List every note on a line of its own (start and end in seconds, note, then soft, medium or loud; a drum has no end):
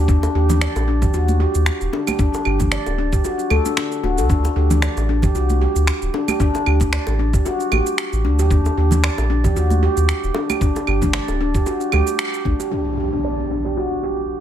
0.00 0.27 D#2 loud
0.08 0.17 D4 medium
0.08 kick loud
0.08 shaker medium
0.23 high bongo medium
0.23 shaker soft
0.35 0.67 D#2 medium
0.35 0.43 G4 medium
0.49 0.60 D4 medium
0.49 high conga medium
0.49 low conga medium
0.49 shaker medium
0.61 0.87 D5 medium
0.61 finger snap loud
0.61 shaker medium
0.76 1.06 A#1 medium
0.76 high bongo medium
0.76 shaker soft
0.88 1.02 D4 medium
1.02 1.13 G4 medium
1.02 kick loud
1.02 low conga medium
1.02 shaker medium
1.14 1.46 D#2 medium
1.14 1.28 F#4 medium
1.14 shaker medium
1.28 high conga medium
1.28 shaker soft
1.40 1.49 G4 medium
1.55 1.70 D#2 medium
1.55 shaker medium
1.66 finger snap loud
1.66 shaker medium
1.81 1.88 D#1 medium
1.81 shaker soft
1.93 2.06 D4 medium
1.93 high bongo medium
2.07 2.18 G4 medium
2.07 high conga medium
2.07 claves medium
2.07 shaker medium
2.19 2.28 D4 medium
2.19 kick loud
2.19 shaker medium
2.34 high bongo medium
2.34 shaker soft
2.45 2.78 G1 loud
2.45 2.54 G4 medium
2.45 claves soft
2.60 2.71 D4 medium
2.60 kick medium
2.60 high conga medium
2.60 low conga medium
2.60 shaker medium
2.72 2.97 D5 medium
2.72 finger snap medium
2.72 shaker medium
2.86 3.17 D1 medium
2.86 high bongo medium
2.86 shaker soft
2.98 3.12 D4 medium
3.13 3.23 G4 medium
3.13 kick loud
3.13 shaker medium
3.24 3.38 F#4 medium
3.24 high bongo soft
3.24 shaker medium
3.39 shaker soft
3.50 3.60 D2 medium
3.50 3.64 A4 medium
3.50 high bongo soft
3.50 high conga medium
3.50 claves medium
3.65 3.76 D4 medium
3.65 high conga soft
3.65 shaker medium
3.77 3.91 D4 medium
3.77 finger snap medium
3.77 shaker medium
3.92 shaker soft
4.03 4.20 D1 medium
4.03 4.17 F#4 medium
4.03 high conga soft
4.18 4.49 D2 medium
4.18 4.25 A4 medium
4.18 shaker medium
4.30 4.38 D4 medium
4.30 kick loud
4.30 shaker soft
4.45 high bongo medium
4.45 shaker soft
4.56 4.88 D2 medium
4.56 4.64 G4 medium
4.70 4.81 D4 medium
4.70 high conga medium
4.70 low conga medium
4.70 shaker medium
4.82 5.08 D5 medium
4.82 finger snap medium
4.82 shaker medium
4.97 5.28 A1 medium
4.97 high bongo medium
4.97 shaker soft
5.09 5.23 D4 medium
5.22 5.34 G4 medium
5.22 kick loud
5.22 low conga medium
5.22 shaker medium
5.35 5.67 C2 medium
5.35 5.49 F#4 medium
5.35 shaker soft
5.49 high conga medium
5.49 shaker soft
5.61 5.70 G4 medium
5.76 5.91 D2 medium
5.76 shaker medium
5.87 finger snap medium
5.87 shaker medium
6.02 6.09 D1 medium
6.02 shaker soft
6.14 6.27 D4 medium
6.14 high bongo medium
6.28 6.39 G4 medium
6.28 high conga medium
6.28 claves medium
6.28 shaker medium
6.40 6.49 D4 loud
6.40 kick loud
6.40 shaker soft
6.55 high bongo medium
6.55 shaker soft
6.66 6.98 D2 medium
6.66 6.75 G4 medium
6.66 claves medium
6.80 6.92 D4 medium
6.80 kick medium
6.80 high conga medium
6.80 shaker medium
6.93 7.18 D5 medium
6.93 finger snap medium
6.93 shaker medium
7.07 7.38 A1 medium
7.07 high bongo medium
7.07 shaker soft
7.19 7.33 D4 medium
7.33 7.44 G4 medium
7.33 kick loud
7.33 shaker medium
7.45 7.59 F#4 medium
7.45 high bongo medium
7.45 shaker soft
7.60 shaker soft
7.72 7.81 A1 medium
7.72 7.80 G4 medium
7.72 high bongo soft
7.72 high conga medium
7.72 claves medium
7.86 shaker medium
7.98 finger snap medium
7.98 shaker soft
8.13 8.26 A1 medium
8.13 shaker soft
8.24 8.40 D2 medium
8.24 8.38 D4 medium
8.24 high conga soft
8.39 8.70 D#2 loud
8.39 8.50 G4 medium
8.39 shaker medium
8.51 8.59 D4 medium
8.51 kick loud
8.51 shaker medium
8.65 high bongo medium
8.65 shaker soft
8.77 9.09 D#2 medium
8.77 8.86 G4 medium
8.91 9.02 D4 medium
8.91 high conga medium
8.91 low conga medium
8.91 shaker medium
9.04 9.29 D5 medium
9.04 finger snap loud
9.04 shaker medium
9.18 9.49 A#1 medium
9.18 high bongo medium
9.18 shaker soft
9.30 9.44 D4 medium
9.44 9.55 G4 medium
9.44 kick medium
9.44 low conga medium
9.44 shaker medium
9.56 9.88 D#2 medium
9.56 9.70 F#4 medium
9.56 shaker medium
9.70 high conga medium
9.70 shaker soft
9.83 9.91 G4 medium
9.97 10.12 D#2 medium
9.97 shaker medium
10.09 finger snap medium
10.09 shaker soft
10.24 10.31 D#1 medium
10.24 shaker soft
10.34 10.48 D4 medium
10.34 high bongo medium
10.50 10.60 G4 medium
10.50 high conga medium
10.50 claves medium
10.50 shaker medium
10.61 10.70 D4 medium
10.61 kick loud
10.61 shaker medium
10.76 high bongo medium
10.76 high conga soft
10.76 shaker soft
10.87 11.19 G1 loud
10.87 10.96 G4 medium
10.87 claves medium
11.02 11.13 D4 medium
11.02 kick medium
11.02 high conga medium
11.02 low conga medium
11.02 shaker medium
11.13 11.39 D5 medium
11.13 finger snap loud
11.13 shaker medium
11.28 11.59 D1 medium
11.28 high bongo medium
11.28 shaker soft
11.41 11.54 D4 medium
11.55 11.66 G4 medium
11.55 kick loud
11.55 shaker medium
11.66 11.80 F#4 medium
11.66 high bongo soft
11.66 shaker soft
11.81 shaker soft
11.92 12.02 D2 loud
11.92 12.01 G4 medium
11.92 high bongo soft
11.92 high conga medium
11.92 claves medium
12.07 shaker medium
12.19 finger snap medium
12.19 shaker soft
12.34 shaker soft
12.45 12.54 A#1 medium
12.45 12.59 D4 medium
12.45 kick medium
12.45 high conga soft
12.60 12.71 G4 medium
12.60 shaker medium
12.71 12.80 D4 medium
12.71 impact medium
12.98 13.06 G4 medium
13.13 13.23 D4 medium
13.24 13.50 D5 medium
13.51 13.65 D4 medium
13.65 13.76 G4 medium
13.77 13.91 F#4 medium
14.03 14.12 G4 medium